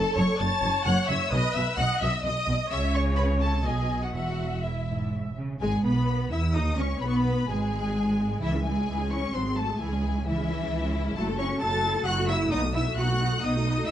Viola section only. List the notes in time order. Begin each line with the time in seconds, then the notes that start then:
Already playing: A4
0.40 C#5
1.32 B4
1.79 D#5
2.25 D#5
2.71 C#5
3.65 D#5
4.16 E5
5.61 G#3
5.84 B3
6.32 E4
6.55 D#4
6.80 C#4
7.03 B3
7.50 G#3
8.42 E3 E4
8.54 G#3 C#4
8.66 E3 E4
8.79 G#3 C#4
8.88 E3 E4
9.00 G#3 C#4
9.11 E3 E4
9.22 G#3 C#4
9.34 F#3 F#4
9.45 G#3 G#4
9.57 F#3 F#4
9.68 G#3 G#4
9.81 E3 E4
9.92 G#3 C#4
10.03 E3 E4
10.15 G#3 C#4
10.27 E3 E4
10.39 G#3 C#4
10.50 E3 E4
10.62 G#3 C#4
10.74 E3 E4
10.84 G#3 C#4
10.96 E3 E4
11.06 G#3 C#4
11.17 F#3 E4
11.30 A3 F#4
11.39 F#3 E4
11.51 A3 F#4
11.62 F#3 E4
11.73 A3 F#4
11.85 F#3 E4
11.95 A3 F#4
12.07 F#3 E4
12.18 A3 F#4
12.29 F#3 E4
12.41 A3 F#4
12.53 B3 D#4
12.63 A3 F#4
12.75 B3 D#4
12.87 A3 F#4
12.99 B3 D#4
13.10 A3 F#4
13.21 B3 D#4
13.32 A3 F#4
13.44 B3 D#4
13.56 A3 F#4
13.67 B3 D#4
13.78 A3 F#4